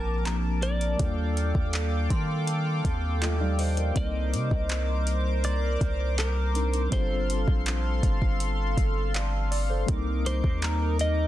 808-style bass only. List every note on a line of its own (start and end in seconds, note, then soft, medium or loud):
0.00 0.96 A#1 loud
1.00 1.53 D#2 loud
1.55 2.08 D#2 loud
2.11 2.82 D#3 medium
2.85 3.92 D#2 loud
3.96 4.35 C2 loud
4.33 4.51 C3 medium
4.52 5.77 C2 loud
5.81 6.88 C2 loud
6.92 7.46 G1 loud
7.48 8.01 A#1 loud
8.03 8.21 G1 loud
8.22 8.75 G1 loud
8.78 9.85 G1 loud
9.89 10.42 C2 loud
10.44 11.28 D#2 loud